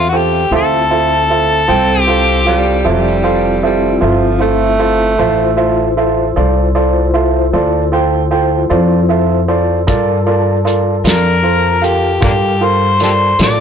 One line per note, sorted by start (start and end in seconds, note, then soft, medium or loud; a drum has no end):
0.00 0.47 E2 medium
0.00 0.45 C4 medium
0.00 0.10 F4 medium
0.00 0.45 F4 medium
0.00 0.46 E5 medium
0.09 0.41 F4 soft
0.09 0.19 F#4 soft
0.09 0.42 A4 soft
0.13 0.53 G4 medium
0.13 0.42 C5 soft
0.13 0.42 G5 soft
0.51 1.65 D2 medium
0.51 5.15 C4 medium
0.51 5.15 E4 medium
0.51 5.15 F4 medium
0.51 0.81 F4 medium
0.51 0.81 A4 medium
0.51 0.81 C5 soft
0.51 0.81 E5 medium
0.55 2.02 A4 medium
0.90 1.19 F4 soft
0.90 1.19 A4 soft
0.90 1.20 C5 soft
0.90 1.20 E5 medium
1.30 1.59 F4 soft
1.30 1.59 A4 soft
1.30 1.59 C5 soft
1.30 1.59 E5 soft
1.68 2.82 C2 medium
1.68 2.06 C4 medium
1.68 1.97 F4 medium
1.68 1.97 A4 soft
1.68 1.97 C5 soft
1.68 1.98 G5 medium
2.02 2.83 G4 medium
2.07 2.46 C4 medium
2.07 2.36 F4 medium
2.07 2.36 A4 soft
2.07 2.36 C5 soft
2.07 2.37 F5 medium
2.46 2.85 G3 medium
2.46 2.75 F4 medium
2.46 2.75 A4 soft
2.46 2.76 C5 soft
2.46 2.75 F5 medium
2.84 3.99 F1 medium
2.84 3.14 F4 medium
2.84 3.14 A4 soft
2.84 3.14 C5 soft
2.84 3.14 E5 medium
2.89 3.63 G3 medium
3.24 3.53 F4 medium
3.24 3.53 A4 soft
3.24 3.53 C5 medium
3.24 3.53 F5 medium
3.63 4.03 G3 medium
3.63 3.92 F4 soft
3.63 3.92 A4 soft
3.63 3.92 C5 soft
3.63 3.92 E5 medium
4.01 5.15 G1 medium
4.01 4.40 F3 medium
4.01 4.31 F4 medium
4.01 4.31 A4 soft
4.01 4.31 C5 medium
4.01 4.31 E5 medium
4.40 5.93 A3 medium
4.40 4.70 F4 medium
4.40 4.70 A4 soft
4.40 4.70 C5 soft
4.40 4.70 E5 medium
4.79 5.09 F4 medium
4.79 5.09 A4 medium
4.79 5.09 C5 soft
4.79 5.09 E5 medium
5.18 6.33 A1 medium
5.18 9.83 E4 medium
5.18 5.48 F4 medium
5.18 9.83 F4 medium
5.18 5.48 A4 medium
5.18 5.48 C5 medium
5.18 9.84 C5 medium
5.18 5.48 E5 medium
5.57 5.87 F4 medium
5.57 5.87 A4 soft
5.57 5.87 C5 soft
5.57 5.87 E5 medium
5.97 6.26 F4 medium
5.97 6.26 A4 soft
5.97 6.26 C5 soft
5.97 6.26 E5 medium
6.36 7.50 C2 medium
6.36 6.65 F4 medium
6.36 6.65 A4 soft
6.36 6.65 C5 soft
6.36 6.65 D5 medium
6.75 7.04 F4 medium
6.75 7.04 A4 soft
6.75 7.04 C5 soft
6.75 7.04 D5 medium
7.14 7.43 F4 medium
7.14 7.43 A4 soft
7.14 7.43 C5 soft
7.14 7.43 E5 medium
7.53 8.67 D2 medium
7.53 7.83 F4 soft
7.53 7.82 A4 soft
7.53 7.83 C5 soft
7.53 7.83 D5 medium
7.92 8.21 F4 medium
7.92 8.21 A4 soft
7.92 8.22 C5 soft
7.92 8.22 G5 medium
8.31 8.60 F4 soft
8.31 8.60 A4 soft
8.31 8.60 C5 soft
8.31 8.61 G5 medium
8.70 9.84 F2 medium
8.70 8.99 F4 medium
8.70 8.99 A4 medium
8.70 8.99 C5 medium
8.70 8.99 D5 medium
9.09 9.38 F4 medium
9.09 9.38 A4 soft
9.09 9.38 C5 soft
9.09 9.39 E5 medium
9.48 9.78 F4 soft
9.48 9.77 A4 soft
9.48 9.78 C5 soft
9.48 9.78 D5 medium
9.87 11.02 G2 medium
9.87 10.17 F4 medium
9.87 13.60 F4 medium
9.87 10.17 A4 medium
9.87 10.16 A#4 medium
9.87 13.60 A#4 medium
9.87 10.17 D5 medium
9.87 13.60 A5 medium
9.87 kick medium
9.87 closed hi-hat medium
10.26 10.56 F4 medium
10.26 10.56 A4 soft
10.26 10.56 A#4 soft
10.26 10.56 D5 medium
10.65 10.94 F4 soft
10.65 10.95 A4 soft
10.65 10.95 A#4 soft
10.65 10.94 D5 medium
10.65 closed hi-hat soft
11.04 12.18 F2 medium
11.04 11.34 F4 soft
11.04 11.34 A4 soft
11.04 11.34 A#4 soft
11.04 11.86 A#4 medium
11.04 11.34 D5 soft
11.04 snare medium
11.04 closed hi-hat medium
11.43 11.73 F4 soft
11.43 11.73 A4 soft
11.43 11.72 A#4 soft
11.43 11.73 C5 soft
11.82 12.12 F4 soft
11.82 12.23 G4 medium
11.82 12.12 A4 soft
11.82 12.12 A#4 soft
11.82 12.12 F5 soft
11.82 closed hi-hat soft
12.20 13.36 G2 medium
12.20 12.31 A#3 medium
12.20 12.33 D4 medium
12.20 12.50 F4 soft
12.20 12.66 G4 medium
12.20 12.51 A4 soft
12.20 12.51 A#4 soft
12.20 12.51 F5 soft
12.20 kick medium
12.20 closed hi-hat medium
12.61 12.90 F4 soft
12.61 12.90 A4 soft
12.61 12.91 A#4 soft
12.61 13.02 C5 medium
12.61 12.91 F5 soft
13.00 13.29 F4 soft
13.00 13.12 G4 medium
13.00 13.29 A4 soft
13.00 13.09 A4 medium
13.00 13.29 A#4 soft
13.00 13.38 C5 medium
13.00 13.30 D5 soft
13.00 snare soft
13.00 closed hi-hat medium
13.39 13.60 A2 medium
13.39 13.60 F4 soft
13.39 13.60 A4 soft
13.39 13.60 A#4 soft
13.39 13.60 D5 medium
13.39 snare medium
13.39 closed hi-hat medium